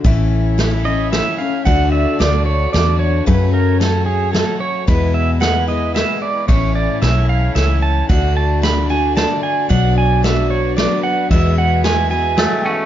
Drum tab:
RD |x-x-x-|x-x-x-|x-x-x-|x-x-x-|
SD |--o-o-|--o-o-|--o-o-|--o-o-|
BD |o-----|o-----|o-----|o-----|

RD |x-x-x-|x-x-x-|x-x-x-|x-x-x-|
SD |--o-o-|--o-o-|--o-o-|--o-o-|
BD |o-----|o-----|o-----|o-----|